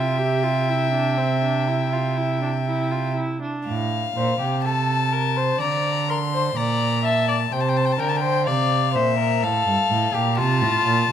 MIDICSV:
0, 0, Header, 1, 5, 480
1, 0, Start_track
1, 0, Key_signature, -1, "major"
1, 0, Tempo, 991736
1, 1773, Time_signature, 4, 2, 24, 8
1, 2245, Tempo, 956938
1, 5497, End_track
2, 0, Start_track
2, 0, Title_t, "Violin"
2, 0, Program_c, 0, 40
2, 0, Note_on_c, 0, 79, 66
2, 1513, Note_off_c, 0, 79, 0
2, 1777, Note_on_c, 0, 77, 65
2, 2226, Note_off_c, 0, 77, 0
2, 2250, Note_on_c, 0, 81, 70
2, 2727, Note_on_c, 0, 82, 69
2, 2735, Note_off_c, 0, 81, 0
2, 2976, Note_on_c, 0, 84, 69
2, 2984, Note_off_c, 0, 82, 0
2, 3212, Note_on_c, 0, 82, 69
2, 3220, Note_off_c, 0, 84, 0
2, 3452, Note_on_c, 0, 81, 67
2, 3459, Note_off_c, 0, 82, 0
2, 3691, Note_on_c, 0, 79, 56
2, 3699, Note_off_c, 0, 81, 0
2, 3735, Note_on_c, 0, 81, 54
2, 3742, Note_off_c, 0, 79, 0
2, 3775, Note_on_c, 0, 79, 58
2, 3782, Note_off_c, 0, 81, 0
2, 3815, Note_on_c, 0, 81, 59
2, 3822, Note_off_c, 0, 79, 0
2, 3856, Note_on_c, 0, 79, 58
2, 3863, Note_off_c, 0, 81, 0
2, 3891, Note_on_c, 0, 81, 61
2, 3899, Note_off_c, 0, 79, 0
2, 3931, Note_on_c, 0, 79, 62
2, 3938, Note_off_c, 0, 81, 0
2, 3976, Note_on_c, 0, 81, 59
2, 3983, Note_off_c, 0, 79, 0
2, 4012, Note_on_c, 0, 79, 74
2, 4019, Note_off_c, 0, 81, 0
2, 4162, Note_off_c, 0, 79, 0
2, 4165, Note_on_c, 0, 77, 68
2, 4406, Note_on_c, 0, 76, 74
2, 4413, Note_off_c, 0, 77, 0
2, 4651, Note_on_c, 0, 77, 77
2, 4658, Note_off_c, 0, 76, 0
2, 5121, Note_off_c, 0, 77, 0
2, 5124, Note_on_c, 0, 81, 77
2, 5497, Note_off_c, 0, 81, 0
2, 5497, End_track
3, 0, Start_track
3, 0, Title_t, "Violin"
3, 0, Program_c, 1, 40
3, 0, Note_on_c, 1, 76, 65
3, 1516, Note_off_c, 1, 76, 0
3, 2016, Note_on_c, 1, 72, 69
3, 2122, Note_off_c, 1, 72, 0
3, 2127, Note_on_c, 1, 67, 69
3, 2249, Note_on_c, 1, 69, 71
3, 2257, Note_off_c, 1, 67, 0
3, 2488, Note_on_c, 1, 70, 67
3, 2496, Note_off_c, 1, 69, 0
3, 2610, Note_on_c, 1, 72, 74
3, 2617, Note_off_c, 1, 70, 0
3, 2727, Note_off_c, 1, 72, 0
3, 2730, Note_on_c, 1, 74, 76
3, 2966, Note_off_c, 1, 74, 0
3, 2975, Note_on_c, 1, 70, 73
3, 3016, Note_off_c, 1, 70, 0
3, 3097, Note_on_c, 1, 72, 74
3, 3211, Note_off_c, 1, 72, 0
3, 3217, Note_on_c, 1, 74, 82
3, 3448, Note_off_c, 1, 74, 0
3, 3451, Note_on_c, 1, 76, 80
3, 3567, Note_off_c, 1, 76, 0
3, 3572, Note_on_c, 1, 74, 76
3, 3612, Note_off_c, 1, 74, 0
3, 3690, Note_on_c, 1, 72, 79
3, 3921, Note_off_c, 1, 72, 0
3, 3924, Note_on_c, 1, 70, 80
3, 4041, Note_off_c, 1, 70, 0
3, 4044, Note_on_c, 1, 72, 80
3, 4166, Note_on_c, 1, 74, 83
3, 4174, Note_off_c, 1, 72, 0
3, 4397, Note_off_c, 1, 74, 0
3, 4400, Note_on_c, 1, 72, 76
3, 4520, Note_off_c, 1, 72, 0
3, 4524, Note_on_c, 1, 70, 77
3, 4646, Note_on_c, 1, 69, 92
3, 4654, Note_off_c, 1, 70, 0
3, 5005, Note_on_c, 1, 67, 79
3, 5013, Note_off_c, 1, 69, 0
3, 5122, Note_on_c, 1, 65, 93
3, 5129, Note_off_c, 1, 67, 0
3, 5497, Note_off_c, 1, 65, 0
3, 5497, End_track
4, 0, Start_track
4, 0, Title_t, "Viola"
4, 0, Program_c, 2, 41
4, 0, Note_on_c, 2, 65, 52
4, 85, Note_on_c, 2, 67, 59
4, 92, Note_off_c, 2, 65, 0
4, 209, Note_on_c, 2, 65, 51
4, 216, Note_off_c, 2, 67, 0
4, 333, Note_on_c, 2, 64, 56
4, 341, Note_off_c, 2, 65, 0
4, 447, Note_off_c, 2, 64, 0
4, 450, Note_on_c, 2, 62, 51
4, 571, Note_on_c, 2, 60, 56
4, 578, Note_off_c, 2, 62, 0
4, 689, Note_off_c, 2, 60, 0
4, 694, Note_on_c, 2, 62, 56
4, 812, Note_on_c, 2, 64, 55
4, 819, Note_off_c, 2, 62, 0
4, 933, Note_on_c, 2, 65, 51
4, 940, Note_off_c, 2, 64, 0
4, 1049, Note_on_c, 2, 64, 56
4, 1056, Note_off_c, 2, 65, 0
4, 1169, Note_off_c, 2, 64, 0
4, 1171, Note_on_c, 2, 62, 51
4, 1210, Note_off_c, 2, 62, 0
4, 1293, Note_on_c, 2, 64, 54
4, 1411, Note_on_c, 2, 65, 54
4, 1418, Note_off_c, 2, 64, 0
4, 1530, Note_off_c, 2, 65, 0
4, 1533, Note_on_c, 2, 64, 57
4, 1652, Note_off_c, 2, 64, 0
4, 1654, Note_on_c, 2, 62, 55
4, 1771, Note_off_c, 2, 62, 0
4, 5497, End_track
5, 0, Start_track
5, 0, Title_t, "Cello"
5, 0, Program_c, 3, 42
5, 0, Note_on_c, 3, 48, 58
5, 1514, Note_off_c, 3, 48, 0
5, 1776, Note_on_c, 3, 45, 64
5, 1994, Note_off_c, 3, 45, 0
5, 2011, Note_on_c, 3, 46, 57
5, 2125, Note_off_c, 3, 46, 0
5, 2129, Note_on_c, 3, 48, 63
5, 2717, Note_off_c, 3, 48, 0
5, 2733, Note_on_c, 3, 50, 63
5, 3203, Note_off_c, 3, 50, 0
5, 3215, Note_on_c, 3, 46, 66
5, 3680, Note_off_c, 3, 46, 0
5, 3691, Note_on_c, 3, 48, 66
5, 3922, Note_off_c, 3, 48, 0
5, 3929, Note_on_c, 3, 50, 67
5, 4166, Note_on_c, 3, 48, 66
5, 4173, Note_off_c, 3, 50, 0
5, 4408, Note_on_c, 3, 46, 69
5, 4415, Note_off_c, 3, 48, 0
5, 4647, Note_on_c, 3, 45, 65
5, 4655, Note_off_c, 3, 46, 0
5, 4766, Note_off_c, 3, 45, 0
5, 4769, Note_on_c, 3, 43, 61
5, 4809, Note_off_c, 3, 43, 0
5, 4885, Note_on_c, 3, 45, 66
5, 5002, Note_off_c, 3, 45, 0
5, 5006, Note_on_c, 3, 46, 70
5, 5123, Note_on_c, 3, 48, 75
5, 5131, Note_off_c, 3, 46, 0
5, 5242, Note_on_c, 3, 45, 67
5, 5249, Note_off_c, 3, 48, 0
5, 5359, Note_off_c, 3, 45, 0
5, 5362, Note_on_c, 3, 46, 68
5, 5479, Note_off_c, 3, 46, 0
5, 5482, Note_on_c, 3, 48, 65
5, 5497, Note_off_c, 3, 48, 0
5, 5497, End_track
0, 0, End_of_file